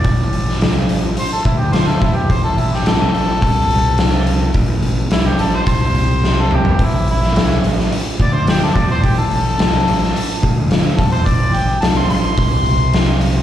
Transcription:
<<
  \new Staff \with { instrumentName = "Harmonica" } { \time 4/4 \key a \minor \tempo 4 = 107 d''4 r4 c''16 a'16 e'16 g'16 c''16 a'16 e'16 g'16 | c''16 a'16 e'16 g'16 a'2. | r4 e'16 g'16 a'16 c''4. a'16 g'8 | e'8 e'4 r4 d''16 c''16 g'16 a'16 d''16 c''16 |
g'16 a'16 a'2 r4 a'16 c''16 | d''8 g''8 a''16 c'''16 c'''2 r8 | }
  \new Staff \with { instrumentName = "Fingered electric bass" } { \clef bass \time 4/4 \key a \minor a,,4 c,8 a,,8 r8 d,4 e,8 | a,,4 c,8 a,,8 c,2 | a,,4 c,8 a,,8 c,2 | a,,4 c,8 a,,8 r8 d,4 e,8 |
a,,4 c,8 a,,8 r8 d,4 e,8 | a,,4 c,8 a,,8 c,2 | }
  \new DrumStaff \with { instrumentName = "Drums" } \drummode { \time 4/4 <hho bd>8 hho16 sn16 <hho sn>8 hho8 hho8 <hho bd>8 <hho sn>8 <hho bd>8 | <hho bd>8 hho16 sn16 <hho sn>8 hho8 <hho bd>8 hho8 <hho sn>8 hho8 | <hho bd>8 hho8 <hho sn>8 hho8 <hho bd>8 hho8 sn8 toml16 tomfh16 | <hho bd>8 hho16 sn16 <hho sn>8 hho16 sn16 hho8 <hho bd>8 <hho sn>8 <hho bd>8 |
<hho bd>8 hho8 <hho sn>8 hho16 sn16 hho8 <hho bd>8 <hho sn>8 <hho bd>8 | <hho bd>8 hho8 <hho sn>8 hho8 <hho bd>8 hho8 <hho sn>8 hho8 | }
>>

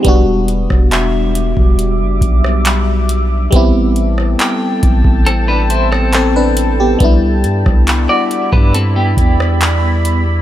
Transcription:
<<
  \new Staff \with { instrumentName = "Synth bell" } { \time 4/4 \key e \minor \tempo 4 = 69 r4 e''2 r4 | r4 g''2 r4 | r1 | }
  \new Staff \with { instrumentName = "Ambient pad" } { \time 4/4 \key e \minor <g e'' d'''>1 | <a' g'' a''>1 | <e' d'' b''>1 | }
  \new Staff \with { instrumentName = "Clean electric guitar" } { \time 4/4 \key e \minor r1 | r2 <c' a'>16 <d' b'>16 <e' c''>16 <c' a'>4~ <c' a'>16 | r4 r16 <fis' d''>8 <d' b'>16 <c' a'>16 <b g'>4. r16 | }
  \new Staff \with { instrumentName = "FM electric piano" } { \time 4/4 \key e \minor r1 | r2. <c' a'>16 <d' b'>8 <b g'>16~ | <b g'>16 r2. r8. | }
  \new Staff \with { instrumentName = "FM electric piano" } { \time 4/4 \key e \minor <g b d' fis'>1 | <g b c' e'>1 | <g b d' e'>1 | }
  \new Staff \with { instrumentName = "808-style bass" } { \clef bass \time 4/4 \key e \minor e,,8. e,,4 e,,8 fis,,16 b,,4. | a,,4 r8 a,,16 a,,2~ a,,16 | c,8 g,16 c,8 r8 g,8. e,4. | }
  \new DrumStaff \with { instrumentName = "Drums" } \drummode { \time 4/4 <hh bd>8 hh16 <bd ss>16 <hc hh>8 hh16 bd16 hh8 <hh bd>16 ss16 <hc hh>8 hh8 | <hh bd>8 hh16 ss16 <hc hh>8 <hh bd>16 bd16 hh8 hh16 ss16 <hc hh>8 hh8 | <hh bd>8 hh16 <bd ss>16 <hc hh>8 hh16 bd16 hh8 <hh bd>16 ss16 <hc hh>8 hh8 | }
>>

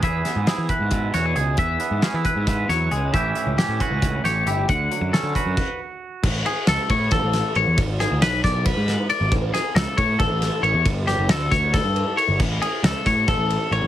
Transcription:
<<
  \new Staff \with { instrumentName = "Clean electric guitar" } { \time 7/8 \key a \major \tempo 4 = 136 e''4 gis'8 b'4 cis''8 gis'8 | e''4 gis'8 b'4 cis''8 gis'8 | e''4 g'8 b'4 cis''8 g'8 | fis''4 a'8 b'4 r4 |
r8 gis'8 a'8 cis''8 a'4 cis''8 | r8 gis'8 b'8 d''8 b'4 d''8 | r8 gis'8 a'8 cis''8 a'4 cis''8 | r8 g'8 a'8 cis''8 a'4 cis''8 |
r8 gis'8 a'8 cis''8 a'4 cis''8 | }
  \new Staff \with { instrumentName = "Clean electric guitar" } { \time 7/8 \key a \major << { <b e' gis'>4 e'8 b'4 fis'16 gis'16 gis'8 | r4 cis'16 e'16 b'2 | <e cis' e' g'>4 cis'8 fis'4 g'8 e'8 | r4 cis'8 fis'2~ |
fis'2 r4. | r2. r8 | r2. r8 | r2. r8 |
r2. r8 | } \\ { e8 b4. b,4. | e8 b4. e8 fis8 gis8 | a,8 e4. a,4. | d8 fis4. r4. |
r2. r8 | r2. r8 | r2. r8 | r2. r8 |
r2. r8 | } >> }
  \new Staff \with { instrumentName = "Picked electric bass" } { \clef bass \time 7/8 \key a \major e,8 r16 gis,16 r16 e16 r16 gis,8. e,8 cis,8 | e,8 r16 gis,16 r16 e16 r16 gis,8. e,8 cis,8 | a,,8 r16 cis,16 r16 a,16 r16 cis,8. a,,8 g,,8 | d,8 r16 fis,16 r16 d16 r16 fis,16 r4. |
a,,8 r8 cis,16 r16 a,8 a,,16 a,,8 r16 a,,16 e,16 | gis,,8. d,16 b,,8 b,,8. gis,8 r8 gis,,16 | a,,8 r8 cis,16 r16 a,8 a,,16 a,,8 r16 a,,16 e,16 | g,,8. fis,,16 d,8 d,8. g,8 r8 g,,16 |
a,,8 r8 cis,16 r16 a,8 a,,16 a,,8 r16 a,,16 a,,16 | }
  \new DrumStaff \with { instrumentName = "Drums" } \drummode { \time 7/8 <hh bd>8 <hh sn>8 <hh sn>8 <hh bd>8 <hh bd>8 <hh sn>8 hh8 | <hh bd>8 hh8 <hh sn>8 <hh bd>8 <hh bd sn>8 <hh sn>8 hh8 | <hh bd>8 hh8 <hh sn>8 <hh bd>8 <hh bd>8 <hh sn>8 hh8 | <hh bd>8 hh8 <hh sn>8 <hh bd>8 <cymc bd>4. |
<cymc bd>8 cymr8 <cymr sn>8 <bd cymr>8 <bd cymr sn>8 <cymr sn>8 cymr8 | <bd cymr>8 <cymr sn>8 <cymr sn>8 <bd cymr sn>8 <bd cymr>8 <cymr sn>8 cymr8 | <bd cymr>8 <cymr sn>8 <cymr sn>8 <bd cymr>8 <bd cymr>8 <cymr sn>8 cymr8 | <bd cymr>8 <cymr sn>8 <cymr sn>8 <bd cymr sn>8 <bd cymr sn>8 cymr8 cymr8 |
<cymc bd>8 cymr8 <cymr sn>8 <bd cymr sn>8 <bd cymr sn>8 cymr8 cymr8 | }
>>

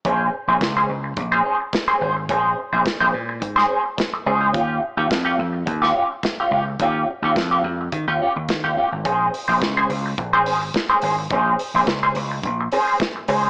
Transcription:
<<
  \new Staff \with { instrumentName = "Clean electric guitar" } { \time 4/4 \key bes \dorian \tempo 4 = 107 <des' aes' c''>8 r16 <des' aes' c''>16 r16 <des' aes' c''>16 r8. <des' aes' c''>16 <des' aes' c''>16 r8 <des' aes' c''>16 <des' aes' c''>16 r16 | <des' aes' c''>8 r16 <des' aes' c''>16 r16 <des' aes' c''>16 r8. <des' aes' c''>16 <des' aes' c''>16 r8. <des' aes' c''>16 <des' aes' c''>16 | <des' f' g'>8 r16 <des' f' g'>16 r16 <des' f' g'>16 r8. <des' f' g'>16 <des' f' g'>16 r8 <des' f' g'>16 <des' f' g'>16 r16 | <des' f' g'>8 r16 <des' f' g'>16 r16 <des' f' g'>16 r8. <des' f' g'>16 <des' f' g'>16 r8 <des' f' g'>16 <des' f' g'>16 r16 |
<des' aes' c''>8 r16 <des' aes' c''>16 r16 <des' aes' c''>16 r8. <des' aes' c''>16 <des' aes' c''>16 r8 <des' aes' c''>16 <des' aes' c''>16 r16 | <des' aes' c''>8 r16 <des' aes' c''>16 r16 <des' aes' c''>16 r4 <des' aes' c''>16 <des' aes' c''>16 r8 <des' aes' c''>16 <des' aes' c''>16 | }
  \new Staff \with { instrumentName = "Slap bass" } { \clef bass \time 4/4 \key bes \dorian bes,,8 r16 bes,,16 des,8 des,8 bes,,8 r4 aes,,8 | bes,,8 r16 bes,,16 r16 bes,,16 bes,8 aes,8 r4 des,8 | ees,8 r16 ees,16 f,8 f,8 ees,8 r4 des,8 | ees,8 r16 ees,16 f,8 f,8 ees16 ees,16 r16 ees,16 ees16 ees,16 r16 aes,,16 |
bes,,8 r16 bes,,16 des,8 des,8 bes,,8 aes,,8 r8 aes,,8 | bes,,8 r16 bes,,16 des,8 des,8 bes,,8 r4 des,8 | }
  \new DrumStaff \with { instrumentName = "Drums" } \drummode { \time 4/4 <hh bd>4 <hh bd sn>4 <hh bd>4 <hh bd sn>4 | <hh bd>4 <hh bd sn>4 <hh bd>16 sn8. <hh bd sn>4 | <hh bd>4 <hh bd sn>4 <hh bd>16 sn8. <hh bd sn>4 | <hh bd>4 <hh bd sn>4 <hh bd>4 <hh bd sn>4 |
<hh bd>8 hho8 <hh bd sn>8 hho8 <hh bd>8 hho8 <hh bd sn>8 hho8 | <hh bd>8 hho8 <hh bd sn>8 hho8 <hh bd>8 hho8 <hh bd sn>8 hho8 | }
>>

